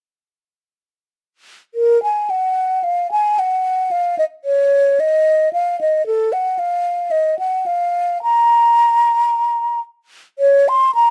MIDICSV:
0, 0, Header, 1, 2, 480
1, 0, Start_track
1, 0, Key_signature, -5, "minor"
1, 0, Tempo, 1158301
1, 721, Time_signature, 4, 2, 24, 8
1, 721, Tempo, 1104972
1, 1201, Tempo, 1069519
1, 3121, Tempo, 1088929
1, 4875, End_track
2, 0, Start_track
2, 0, Title_t, "Flute"
2, 0, Program_c, 0, 73
2, 724, Note_on_c, 0, 70, 63
2, 844, Note_off_c, 0, 70, 0
2, 848, Note_on_c, 0, 80, 56
2, 965, Note_on_c, 0, 78, 59
2, 971, Note_off_c, 0, 80, 0
2, 1197, Note_on_c, 0, 77, 59
2, 1204, Note_off_c, 0, 78, 0
2, 1319, Note_off_c, 0, 77, 0
2, 1322, Note_on_c, 0, 80, 58
2, 1446, Note_on_c, 0, 78, 51
2, 1452, Note_off_c, 0, 80, 0
2, 1681, Note_on_c, 0, 77, 58
2, 1688, Note_off_c, 0, 78, 0
2, 1800, Note_off_c, 0, 77, 0
2, 1803, Note_on_c, 0, 75, 53
2, 1830, Note_off_c, 0, 75, 0
2, 1920, Note_on_c, 0, 73, 54
2, 2168, Note_on_c, 0, 75, 54
2, 2175, Note_off_c, 0, 73, 0
2, 2404, Note_off_c, 0, 75, 0
2, 2407, Note_on_c, 0, 77, 58
2, 2526, Note_off_c, 0, 77, 0
2, 2531, Note_on_c, 0, 75, 55
2, 2644, Note_off_c, 0, 75, 0
2, 2646, Note_on_c, 0, 69, 63
2, 2764, Note_on_c, 0, 78, 56
2, 2770, Note_off_c, 0, 69, 0
2, 2881, Note_on_c, 0, 77, 58
2, 2888, Note_off_c, 0, 78, 0
2, 3116, Note_on_c, 0, 75, 58
2, 3122, Note_off_c, 0, 77, 0
2, 3236, Note_off_c, 0, 75, 0
2, 3239, Note_on_c, 0, 78, 60
2, 3359, Note_on_c, 0, 77, 56
2, 3366, Note_off_c, 0, 78, 0
2, 3605, Note_off_c, 0, 77, 0
2, 3607, Note_on_c, 0, 82, 68
2, 4302, Note_off_c, 0, 82, 0
2, 4561, Note_on_c, 0, 73, 74
2, 4691, Note_on_c, 0, 84, 71
2, 4697, Note_off_c, 0, 73, 0
2, 4804, Note_off_c, 0, 84, 0
2, 4807, Note_on_c, 0, 82, 69
2, 4875, Note_off_c, 0, 82, 0
2, 4875, End_track
0, 0, End_of_file